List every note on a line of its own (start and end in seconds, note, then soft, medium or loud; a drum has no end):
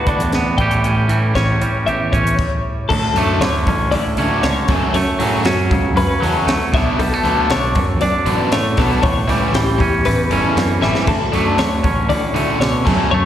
0.00 0.59 D2 medium
0.00 0.58 A2 medium
0.00 0.59 D3 medium
0.00 0.34 B3 medium
0.00 0.57 F#4 soft
0.06 0.18 D2 medium
0.06 0.56 D4 medium
0.06 0.57 D5 medium
0.06 kick medium
0.06 closed hi-hat medium
0.18 0.42 E2 medium
0.18 closed hi-hat medium
0.32 0.57 B3 medium
0.32 snare loud
0.32 closed hi-hat medium
0.57 1.04 A1 medium
0.57 3.92 A2 medium
0.57 1.08 E3 medium
0.57 1.08 G3 medium
0.57 0.84 C#4 soft
0.57 1.10 G5 medium
0.57 kick medium
0.57 closed hi-hat medium
0.61 1.87 G4 medium
0.71 closed hi-hat medium
0.84 1.35 C#4 medium
0.84 closed hi-hat medium
1.07 1.32 A2 medium
1.07 2.35 E3 medium
1.07 1.60 G3 medium
1.07 closed hi-hat medium
1.35 1.58 A1 medium
1.35 2.12 C#4 medium
1.35 1.86 C#5 medium
1.35 kick medium
1.35 snare loud
1.35 closed hi-hat medium
1.62 3.17 G3 medium
1.62 closed hi-hat medium
1.86 1.98 A1 loud
1.86 2.36 E2 medium
1.86 2.36 G4 medium
1.86 2.12 E5 medium
1.86 closed hi-hat medium
2.12 2.24 A1 medium
2.12 2.36 C#4 medium
2.12 2.64 C#5 medium
2.12 kick medium
2.12 closed hi-hat medium
2.24 2.36 A1 medium
2.24 closed hi-hat medium
2.39 kick loud
2.39 crash medium
2.89 3.01 D2 medium
2.89 4.69 D2 medium
2.89 3.41 A4 medium
2.89 muted overdriven electric guitar stroke soft
2.89 kick loud
2.89 crash loud
3.14 3.37 F#2 medium
3.14 3.41 F#3 medium
3.14 3.42 A3 medium
3.14 3.42 D4 loud
3.14 open hi-hat medium
3.18 3.41 D3 medium
3.18 4.95 A3 medium
3.40 3.63 D2 medium
3.40 4.43 D3 medium
3.40 3.91 C#5 medium
3.40 muted overdriven electric guitar stroke soft
3.40 snare loud
3.40 open hi-hat medium
3.66 3.91 A1 loud
3.66 4.18 C#4 medium
3.66 muted overdriven electric guitar stroke medium
3.66 kick medium
3.66 open hi-hat medium
3.91 4.03 D2 loud
3.91 4.44 A2 medium
3.91 4.43 D5 medium
3.91 muted overdriven electric guitar stroke soft
3.91 open hi-hat medium
4.17 4.29 C#2 medium
4.17 4.42 D3 medium
4.17 4.43 F#3 medium
4.17 4.43 A3 medium
4.17 4.66 C#4 medium
4.17 4.43 D4 medium
4.17 open hi-hat medium
4.43 4.66 C#2 loud
4.43 4.69 D3 medium
4.43 4.69 C#5 medium
4.43 muted overdriven electric guitar stroke soft
4.43 snare loud
4.43 open hi-hat medium
4.68 4.80 F#2 medium
4.68 6.70 F#2 medium
4.68 4.94 C#3 medium
4.68 4.94 F#3 medium
4.68 4.95 A3 medium
4.68 4.95 C#4 loud
4.68 4.94 A4 medium
4.68 kick loud
4.68 snare soft
4.68 open hi-hat medium
4.94 5.06 F#2 loud
4.94 6.46 A3 medium
4.94 5.45 C#5 medium
4.94 muted overdriven electric guitar stroke soft
4.94 open hi-hat medium
5.19 5.43 A2 medium
5.19 5.45 C#3 medium
5.19 6.19 F#3 medium
5.19 5.45 F#3 medium
5.19 5.46 A3 medium
5.19 5.46 C#4 loud
5.19 open hi-hat medium
5.45 5.68 F#2 medium
5.45 5.95 C#4 medium
5.45 5.97 F#4 medium
5.45 muted overdriven electric guitar stroke soft
5.45 snare loud
5.45 open hi-hat medium
5.70 5.94 C#2 loud
5.70 6.22 C#3 medium
5.70 muted overdriven electric guitar stroke soft
5.70 kick medium
5.70 open hi-hat medium
5.94 6.07 F#2 loud
5.94 6.70 C#4 medium
5.94 6.24 B4 medium
5.94 muted overdriven electric guitar stroke medium
5.94 open hi-hat medium
6.20 6.34 E2 medium
6.20 6.48 C#3 medium
6.20 6.69 F#3 medium
6.20 6.48 F#3 medium
6.20 6.48 A3 medium
6.20 6.48 C#4 loud
6.20 6.74 A4 medium
6.20 open hi-hat medium
6.46 6.70 C#2 loud
6.46 6.75 A3 medium
6.46 muted overdriven electric guitar stroke soft
6.46 snare loud
6.46 open hi-hat medium
6.72 6.85 B1 medium
6.72 7.24 B2 medium
6.72 6.98 B2 medium
6.72 6.99 F#3 medium
6.72 6.99 B3 medium
6.72 6.99 D4 loud
6.72 7.00 E5 medium
6.72 kick loud
6.72 snare soft
6.72 open hi-hat medium
6.99 7.10 B1 medium
6.99 7.14 G3 medium
6.99 7.50 A4 medium
6.99 muted overdriven electric guitar stroke soft
6.99 open hi-hat medium
7.14 8.51 A3 medium
7.24 7.47 D2 medium
7.24 7.49 B2 medium
7.24 8.24 D3 medium
7.24 7.49 F#3 medium
7.24 7.49 B3 loud
7.24 7.49 D4 loud
7.24 open hi-hat medium
7.50 7.73 B1 medium
7.50 8.01 D4 medium
7.50 8.01 C#5 medium
7.50 muted overdriven electric guitar stroke soft
7.50 snare loud
7.50 open hi-hat medium
7.75 8.01 F#2 loud
7.75 8.75 F#2 medium
7.75 muted overdriven electric guitar stroke soft
7.75 kick medium
7.75 open hi-hat medium
8.01 8.13 B1 loud
8.01 8.75 D4 medium
8.01 8.52 D5 medium
8.01 muted overdriven electric guitar stroke medium
8.01 open hi-hat medium
8.25 8.37 A1 medium
8.25 8.51 B2 medium
8.25 9.54 D3 medium
8.25 8.51 F#3 medium
8.25 8.51 B3 medium
8.25 8.52 D4 loud
8.25 open hi-hat medium
8.52 8.75 A2 loud
8.52 8.81 A3 medium
8.52 8.78 C#5 medium
8.52 muted overdriven electric guitar stroke medium
8.52 snare loud
8.52 open hi-hat medium
8.77 8.89 B1 loud
8.77 9.00 B2 medium
8.77 9.02 B2 medium
8.77 9.03 F#3 loud
8.77 9.03 B3 loud
8.77 9.03 D4 loud
8.77 9.04 A4 medium
8.77 kick medium
8.77 snare soft
8.77 open hi-hat medium
9.02 9.15 A1 loud
9.02 10.05 A2 medium
9.02 9.54 C#5 medium
9.02 muted overdriven electric guitar stroke soft
9.02 kick loud
9.02 open hi-hat medium
9.28 9.51 C#2 medium
9.28 9.52 E3 medium
9.28 9.52 G3 medium
9.28 10.82 G3 medium
9.28 9.53 C#4 medium
9.28 9.54 E4 loud
9.28 open hi-hat medium
9.53 9.76 A1 medium
9.53 10.56 E3 medium
9.53 10.06 G4 medium
9.53 muted overdriven electric guitar stroke soft
9.53 snare loud
9.53 open hi-hat medium
9.78 10.05 E2 loud
9.78 10.32 C#4 medium
9.78 muted overdriven electric guitar stroke soft
9.78 kick medium
9.78 open hi-hat medium
10.04 10.16 A1 loud
10.04 11.05 E2 medium
10.04 10.31 B4 medium
10.04 muted overdriven electric guitar stroke soft
10.04 open hi-hat medium
10.30 10.42 G1 medium
10.30 10.56 E3 medium
10.30 10.56 G3 medium
10.30 10.57 C#4 loud
10.30 11.11 C#4 medium
10.30 10.57 E4 loud
10.30 10.82 A4 medium
10.30 open hi-hat medium
10.57 10.80 F#2 loud
10.57 11.05 E3 medium
10.57 muted overdriven electric guitar stroke soft
10.57 snare loud
10.57 open hi-hat medium
10.81 10.93 A1 medium
10.81 11.07 E3 medium
10.81 11.07 G3 medium
10.81 11.08 G3 medium
10.81 11.08 C#4 medium
10.81 11.07 E4 loud
10.81 11.08 E5 medium
10.81 snare medium
10.95 snare medium
11.07 11.19 D2 medium
11.07 12.87 D2 medium
11.07 11.59 A4 medium
11.07 muted overdriven electric guitar stroke soft
11.07 kick loud
11.07 crash loud
11.33 11.56 F#2 medium
11.33 11.57 D3 medium
11.33 11.57 F#3 medium
11.33 11.58 A3 loud
11.33 13.14 A3 medium
11.33 11.58 D4 loud
11.33 open hi-hat medium
11.58 11.82 D2 medium
11.58 12.61 D3 medium
11.58 12.09 C#5 medium
11.58 muted overdriven electric guitar stroke soft
11.58 snare loud
11.58 open hi-hat medium
11.84 12.09 A1 medium
11.84 12.34 C#4 medium
11.84 muted overdriven electric guitar stroke soft
11.84 kick medium
11.84 open hi-hat medium
12.09 12.21 D2 loud
12.09 12.61 A2 medium
12.09 12.60 D5 medium
12.09 muted overdriven electric guitar stroke soft
12.09 open hi-hat medium
12.35 12.47 C#2 medium
12.35 12.59 D3 medium
12.35 12.59 F#3 medium
12.35 12.59 A3 loud
12.35 12.83 C#4 medium
12.35 12.59 D4 loud
12.35 open hi-hat medium
12.60 12.83 B2 loud
12.60 12.87 D3 medium
12.60 12.86 C#5 medium
12.60 muted overdriven electric guitar stroke soft
12.60 snare loud
12.60 open hi-hat medium
12.85 12.98 F#2 loud
12.85 13.25 F#2 medium
12.85 13.11 C#3 medium
12.85 13.11 F#3 medium
12.85 13.11 A3 medium
12.85 13.11 C#4 medium
12.85 13.11 A4 medium
12.85 kick medium
12.85 snare soft
12.85 crash loud
13.11 13.24 F#2 loud
13.11 13.25 A3 medium
13.11 13.25 C#5 medium
13.11 muted overdriven electric guitar stroke medium